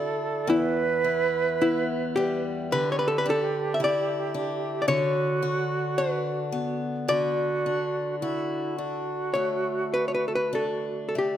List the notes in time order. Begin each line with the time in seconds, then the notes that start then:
Already playing: D3 D4 E4 F#4 A4
0.47 E2 E4 B4
1.04 E4
1.61 B3 E4
2.16 G3 G4
2.70 D3 G4 B4
2.92 C#5
2.99 B4
3.08 A4
3.18 B4
3.26 D4
3.30 A4
3.74 E5
3.80 E4
3.84 D5
4.34 D4
4.82 D5
4.87 D3 F#4 C#5
5.42 F#4
5.98 D4 B4
6.52 B3
7.07 D3 F#4 D5
7.66 D4
8.21 E4 F#4
8.77 D4 F#4
9.34 A3 C#5
9.94 B4
10.08 C#5
10.15 B4
10.28 A4
10.35 B4
10.53 D4 A4
11.09 A4
11.15 A3 G4